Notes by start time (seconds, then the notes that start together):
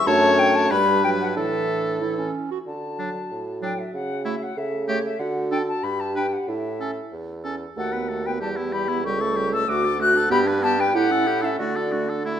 0.07 F#2 A3 D4 C#5 A5
0.38 G5
0.55 A5
0.70 G2 G3 D4 B4 B5
1.04 F#3 G5
1.21 F#5
1.36 A2 E3 D4 A4 E5
2.01 E3 E4
2.18 C#4
2.51 F#4
2.66 D3 F#4 A5
2.99 F#3 D4
3.31 A2
3.62 F#3 D4 G5
3.79 E5
3.93 C#3 F#5
4.25 A3 E4 E5
4.43 F#5
4.56 C#3 A4 E5
4.88 A3 G4 C#5
5.05 E5
5.19 D3 F#4 F#5
5.51 D4 A4 G5
5.68 A5
5.83 G2 G4 B5
6.00 A5
6.15 D4 B4 G5
6.33 F#5
6.47 A2 E4 E5
6.80 C#4 A4
7.12 E2
7.44 C#4 A4
7.76 D#2 A3 F#4 A4 F#5
7.93 B3 B4
8.09 A3 A4
8.26 B3 B4 G5
8.40 E2 G3 G4 A5
8.57 B3 E4
8.73 G3 G4 B5
8.88 B3 E4
9.04 C#2 G3 G4 A4 C#6
9.21 A3 A4
9.36 G3 G4
9.53 A3 A4 E6
9.67 D2 A3 F#4 D6
9.84 D4 A4
9.99 A3 F#4 F#6
10.14 D4 A4
10.30 G2 B3 G4 B5
10.45 D4 B4
10.62 B3 G4 A5
10.78 D4 B4 G5
10.94 A2 E4 G4 F#5
11.11 C#4 A4
11.26 E4 G4
11.42 C#4 A4 E5
11.58 D3 A3 F#4 D5
11.76 D4 A4
11.92 A3 F#4
12.08 D4 A4
12.25 A3 E4